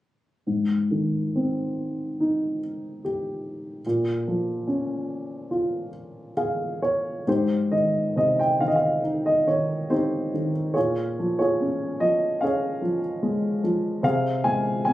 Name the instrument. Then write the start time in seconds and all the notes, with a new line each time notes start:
grand piano
0.47 G#2
0.91 D#3
1.36 C4
2.20 D#4
3.05 G4
3.86 A#2
4.28 F3
4.67 C#4
5.51 F4
6.37 G#4 F5
6.82 C#5
7.27 G#2 D#4 G4 C5
7.71 D#3 D#5
8.16 C3 D#5
8.39 G5
8.60 D#3 F5
8.68 D#5
8.75 F5
9.04 D#4
9.26 D#5
9.47 D#3 C#5
9.90 C4 D#4 G4 C5
10.34 D#3
10.74 A#2 F4 G#4 C#5
11.19 F3
11.39 F4 G#4 C#5
11.61 C#4
12.00 F3 D#5
12.41 C#4 G#4 C#5 F5
12.81 F3
13.23 G#3
13.63 F3
14.03 C3 G#4 F5
14.44 G#3 G#5
14.85 C4 G#5